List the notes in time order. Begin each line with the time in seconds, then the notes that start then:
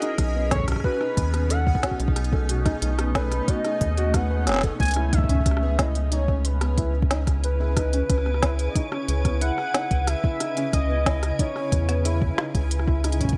Already playing: B2 B3 C#4 F#4 G#4 D#5 G#5
0.02 D#4, closed hi-hat
0.18 B1 D#4, kick, cross-stick, closed hi-hat
0.35 B3
0.51 A4 C#5, kick, snare, closed hi-hat
0.55 kick
0.60 kick
0.64 kick
0.68 kick, cross-stick, closed hi-hat
0.72 kick, cross-stick
0.76 kick, cross-stick
0.80 kick, cross-stick
0.84 A3 F#4 B4, kick, cross-stick
0.88 cross-stick
0.93 cross-stick
0.97 cross-stick
1.01 D#4, cross-stick
1.17 D#2, kick, closed hi-hat
1.34 B3, cross-stick, closed hi-hat
1.50 A4 F#5, closed hi-hat
1.67 kick
1.75 kick
1.83 F#4, kick, cross-stick, snare, closed hi-hat
1.91 kick
2.00 B1, closed hi-hat
2.08 kick
2.16 cross-stick, closed hi-hat
2.24 closed hi-hat
2.33 A4, kick
2.49 F#4, closed hi-hat
2.66 D#4, kick, cross-stick, closed hi-hat
2.82 B1 D#4, closed hi-hat
2.98 B3, cross-stick, closed hi-hat
3.15 A4 B4, kick, snare, closed hi-hat
3.32 cross-stick, closed hi-hat
3.48 F#4 D#5, kick, closed hi-hat
3.64 D#4, cross-stick, closed hi-hat
3.81 D#2, kick, closed hi-hat
3.97 F#4, closed hi-hat
4.14 B3 F#5, kick, cross-stick, closed hi-hat
4.30 B4
4.47 F#1 B3, cross-stick, snare, closed hi-hat
4.49 snare
4.52 snare
4.54 snare
4.56 snare
4.59 snare
4.61 A4, kick, snare, closed hi-hat
4.80 C#2 C#3 G#4 G#5, kick, closed hi-hat
4.83 closed hi-hat
4.85 closed hi-hat
4.88 closed hi-hat
4.91 closed hi-hat
4.94 E4, cross-stick, closed hi-hat
5.13 D#4 E5, kick, closed hi-hat
5.18 kick
5.24 kick
5.29 C#4, kick, closed hi-hat
5.35 kick
5.40 kick
5.46 C#4, kick, cross-stick, closed hi-hat
5.51 cross-stick
5.57 cross-stick
5.62 B3
5.79 E4 D#5, kick, cross-stick, snare, closed hi-hat
5.89 E4
5.95 B4, closed hi-hat
6.12 D#4 C#5, closed hi-hat
6.28 C#4, kick
6.45 B4, closed hi-hat
6.61 B3, cross-stick, closed hi-hat
6.78 E4, kick, closed hi-hat
7.02 kick
7.11 D#4, snare, closed hi-hat
7.27 kick, cross-stick, closed hi-hat
7.44 B4, closed hi-hat
7.60 E4
7.77 D#4, kick, cross-stick, closed hi-hat
7.93 C#4, closed hi-hat
8.10 C#2 C#4, kick, cross-stick, closed hi-hat
8.18 cross-stick
8.26 B3, cross-stick
8.34 cross-stick
8.43 E4, kick, cross-stick, snare, closed hi-hat
8.59 closed hi-hat
8.68 D#5
8.75 D#4 C#5, kick, closed hi-hat
8.92 C#4, cross-stick
9.08 C#2, closed hi-hat
9.25 B3, kick, cross-stick, closed hi-hat
9.41 E4 F#5, closed hi-hat
9.58 cross-stick
9.74 D#4, snare, closed hi-hat
9.91 C#2, kick, closed hi-hat
10.07 E5, cross-stick, closed hi-hat
10.24 E4, kick
10.40 D#4, cross-stick, closed hi-hat
10.57 C#4, closed hi-hat
10.73 C#2 C#4 D#5, kick, cross-stick, closed hi-hat
10.90 B3
11.06 E4, kick, snare, closed hi-hat
11.23 cross-stick, closed hi-hat
11.39 D#4 C#5, kick, closed hi-hat
11.56 C#4, cross-stick
11.72 E2, kick, closed hi-hat
11.89 B3, cross-stick, closed hi-hat
12.05 E4, closed hi-hat
12.22 kick
12.38 D#4, cross-stick, snare
12.55 C#2, kick, closed hi-hat
12.71 closed hi-hat
12.79 cross-stick
12.88 E4, kick
13.04 D#4, cross-stick, closed hi-hat
13.12 closed hi-hat
13.21 C#4, kick, closed hi-hat
13.25 kick
13.29 kick, closed hi-hat
13.33 kick